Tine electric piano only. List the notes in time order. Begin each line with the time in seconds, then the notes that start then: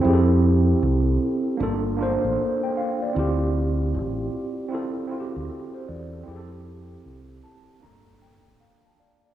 0.01 C4 E4 G4
0.07 G#4
0.13 A4
1.57 A#3 D4
1.61 F4 A4
1.96 A#3 D4
2.01 F4 C5
2.63 G5
2.77 F5
3.02 D5
3.13 C4 E4 F4
3.19 G4
4.68 C4 E4 F4
4.74 A4
5.07 C4 E4 F4
5.13 F#4
5.20 G4
5.49 A4
5.74 C5
5.88 D5
6.13 A4
6.24 C4 E4
6.28 G4 G#4
6.36 A4
7.44 A5
7.80 A#3 D4 A#5
7.84 F4 A4
8.22 G5
8.60 F5
8.86 A5
9.00 D5 F5
9.26 D5